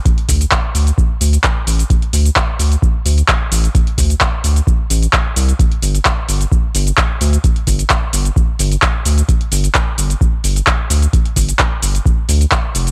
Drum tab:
HH |xxoxx-ox--oxx-ox|xxoxx-ox--oxx-ox|xxoxx-ox--oxx-ox|xxoxx-ox--oxx-ox|
SH |x-xxx-xxx-xxx-xx|x-xxx-xxx-xxx-xx|x-xxx-xxx-xxx-xx|x-xxx-xxx-xxx-xx|
CP |----x-------x---|----x-------x---|----x-------x---|----x-------x---|
BD |o-o-o---o---o---|o---o---o---o---|o-o-o---o---o---|o---o---o---o---|

HH |xxoxx-ox--oxx-ox|xxoxx-ox--oxx-ox|xxoxx-ox--oxx-ox|
SH |x-xxx-xxx-xxx-xx|x-xxx-xxx-xxx-xx|x-xxx-xxx-xxx-xx|
CP |----x-------x---|----x-------x---|----x-------x---|
BD |o-o-o---o---o---|o---o---o---o---|o-o-o---o---o---|